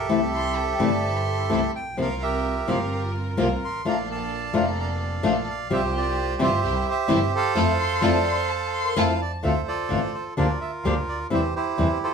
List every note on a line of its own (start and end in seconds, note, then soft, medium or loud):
0.00 0.10 A#1 medium
0.00 1.71 G4 medium
0.00 1.71 A4 medium
0.00 1.71 E5 medium
0.09 0.77 C2 medium
0.09 0.19 C3 medium
0.09 0.19 E3 medium
0.09 0.19 A3 medium
0.09 0.19 C4 medium
0.09 0.77 C4 medium
0.09 0.19 E4 medium
0.09 0.77 E4 medium
0.09 0.77 A4 medium
0.33 0.57 A4 medium
0.33 0.58 C6 medium
0.57 0.79 C5 medium
0.57 0.83 G5 medium
0.79 1.47 G1 medium
0.79 0.89 C3 medium
0.79 0.89 E3 medium
0.79 0.89 A3 medium
0.79 1.47 C4 medium
0.79 0.89 C4 medium
0.79 1.47 E4 medium
0.79 0.89 E4 medium
0.79 1.47 A4 medium
0.79 1.05 D5 medium
0.79 1.03 A5 medium
1.04 1.28 C5 medium
1.04 1.18 A5 medium
1.16 1.63 C6 medium
1.26 1.60 A4 medium
1.49 1.70 C2 medium
1.49 1.59 C3 medium
1.49 1.59 E3 medium
1.49 1.59 A3 medium
1.49 1.59 C4 medium
1.49 1.71 C4 medium
1.49 1.60 E4 medium
1.49 1.71 E4 medium
1.49 1.71 A4 medium
1.74 1.97 A#1 medium
1.74 1.97 G5 medium
1.97 2.64 C2 medium
1.97 2.07 C3 medium
1.97 2.07 F3 medium
1.97 2.07 A#3 medium
1.97 2.07 C4 medium
1.97 2.65 C4 medium
1.97 2.65 F4 medium
1.97 2.07 F4 medium
1.97 2.65 A#4 medium
1.97 2.23 F5 medium
2.02 2.22 A#4 medium
2.22 3.12 G4 medium
2.22 2.92 A#4 medium
2.22 2.70 E5 medium
2.68 3.35 G1 medium
2.68 2.77 C3 medium
2.68 2.77 F3 medium
2.68 2.77 A#3 medium
2.68 3.35 C4 medium
2.68 2.77 C4 medium
2.68 3.35 F4 medium
2.68 2.77 F4 medium
2.68 3.35 A#4 medium
2.68 2.90 F5 medium
2.92 3.82 A#4 medium
2.92 3.02 F5 medium
3.37 3.58 C2 medium
3.37 3.47 C3 medium
3.37 3.47 F3 medium
3.37 3.47 A#3 medium
3.37 3.47 C4 medium
3.37 3.58 C4 medium
3.37 3.47 F4 loud
3.37 3.58 F4 medium
3.37 3.58 A#4 medium
3.62 3.85 G#1 medium
3.62 3.87 C6 medium
3.85 4.51 A#1 medium
3.85 3.94 F3 medium
3.85 3.94 A3 medium
3.85 4.51 A#3 medium
3.85 4.51 D4 medium
3.85 3.94 D4 medium
3.85 3.95 F4 medium
3.85 4.51 A4 medium
3.85 4.08 D5 medium
3.85 4.09 F5 medium
3.89 3.99 A#5 medium
4.10 4.79 D5 medium
4.10 4.79 F5 medium
4.10 4.53 A5 medium
4.53 5.21 F1 medium
4.53 4.63 F3 medium
4.53 4.63 A3 medium
4.53 5.21 A#3 medium
4.53 4.63 D4 medium
4.53 5.21 D4 medium
4.53 4.63 F4 medium
4.53 5.21 A4 medium
4.53 4.77 A#5 medium
4.79 5.68 D5 medium
4.79 5.48 F5 medium
4.79 4.89 A#5 medium
5.23 5.44 A#1 medium
5.23 5.33 F3 medium
5.23 5.33 A3 medium
5.23 5.44 A#3 medium
5.23 5.33 D4 loud
5.23 5.44 D4 medium
5.23 5.33 F4 medium
5.23 5.44 A4 medium
5.48 5.71 A#1 medium
5.48 5.72 F5 loud
5.70 6.37 C2 medium
5.70 5.79 C3 medium
5.70 5.79 F3 medium
5.70 5.80 G3 medium
5.70 5.80 C4 medium
5.70 6.37 C4 medium
5.70 6.37 F4 medium
5.70 6.37 G4 medium
5.70 5.80 G4 medium
5.70 5.95 G4 medium
5.70 6.40 C5 medium
5.70 5.83 E5 medium
5.96 6.61 F4 medium
5.96 6.41 G4 medium
5.96 6.39 D5 medium
6.39 6.60 G1 medium
6.39 6.49 C3 medium
6.39 6.49 E3 medium
6.39 6.49 G3 medium
6.39 6.49 C4 medium
6.39 6.60 C4 medium
6.39 6.49 E4 medium
6.39 6.60 F4 medium
6.39 6.60 G4 medium
6.39 6.87 G4 medium
6.39 6.87 C5 medium
6.44 6.89 E5 medium
6.63 6.83 C2 medium
6.63 6.82 C4 medium
6.63 6.83 E4 medium
6.63 6.83 G4 medium
6.88 7.53 G4 medium
6.88 7.34 C5 medium
6.88 7.32 E5 medium
7.08 7.29 G1 medium
7.08 7.18 C3 medium
7.08 7.18 E3 loud
7.08 7.18 G3 loud
7.08 7.18 C4 loud
7.08 7.29 C4 medium
7.08 7.18 E4 loud
7.08 7.29 E4 medium
7.08 7.29 G4 medium
7.35 8.94 A4 medium
7.35 8.94 C5 medium
7.35 8.95 F5 loud
7.55 7.73 F2 medium
7.55 7.71 F3 medium
7.55 7.71 A3 medium
7.55 7.70 C4 medium
7.55 7.71 E4 medium
7.55 7.71 F4 medium
7.55 7.71 A4 medium
7.78 7.90 A4 medium
7.78 8.04 C6 loud
7.91 8.03 C5 medium
8.01 8.20 F2 medium
8.01 8.17 F3 medium
8.01 8.17 A3 medium
8.01 8.17 C4 medium
8.01 8.17 E4 medium
8.01 8.17 F4 medium
8.01 8.18 A4 medium
8.01 8.35 D5 loud
8.01 8.27 A5 medium
8.25 8.50 C6 medium
8.37 8.50 C5 medium
8.49 8.82 A4 medium
8.49 8.72 A5 medium
8.72 8.99 C6 loud
8.84 8.96 A#4 medium
8.96 9.14 F2 medium
8.96 9.12 F3 loud
8.96 9.11 A3 loud
8.96 9.12 C4 loud
8.96 9.12 E4 medium
8.96 9.12 F4 medium
8.96 9.12 A4 medium
8.96 9.21 F5 loud
8.96 9.44 A5 medium
9.21 9.32 D5 medium
9.43 9.63 D2 medium
9.43 9.52 D3 medium
9.43 9.52 A3 medium
9.43 9.52 C4 medium
9.43 9.53 F4 medium
9.43 9.67 A4 medium
9.43 10.13 C5 medium
9.43 9.65 E5 medium
9.68 10.34 F4 medium
9.68 10.34 A4 medium
9.68 10.16 D5 medium
9.89 10.10 A1 medium
9.89 9.99 D3 medium
9.89 9.99 A3 medium
9.89 9.99 C4 medium
9.89 9.99 F4 medium
10.14 10.24 C5 medium
10.37 10.57 D2 medium
10.37 10.46 D3 medium
10.37 10.46 F3 medium
10.37 10.46 A#3 medium
10.37 10.46 D4 medium
10.37 11.27 F4 medium
10.37 10.46 G4 medium
10.37 11.27 A#4 medium
10.37 10.59 D5 medium
10.61 10.71 E5 medium
10.84 11.04 D2 medium
10.84 10.93 D3 medium
10.84 10.94 F3 medium
10.84 10.94 A#3 medium
10.84 10.94 D4 medium
10.84 10.94 G4 medium
10.84 10.94 F5 medium
11.08 11.31 D2 soft
11.08 11.19 D5 medium
11.30 11.51 E2 medium
11.30 11.39 C3 medium
11.30 11.40 E3 medium
11.30 11.40 G3 medium
11.30 11.40 C4 medium
11.30 11.40 E4 medium
11.30 11.54 G4 medium
11.30 11.54 C5 medium
11.30 11.43 E5 medium
11.55 12.14 E4 medium
11.55 12.14 G4 medium
11.55 11.99 C5 medium
11.78 11.97 E2 medium
11.78 11.87 C3 medium
11.78 11.87 E3 medium
11.78 11.87 G3 medium
11.78 11.87 C4 medium
11.78 11.87 E4 medium
12.03 12.14 F4 medium
12.03 12.14 A4 medium
12.03 12.14 C5 medium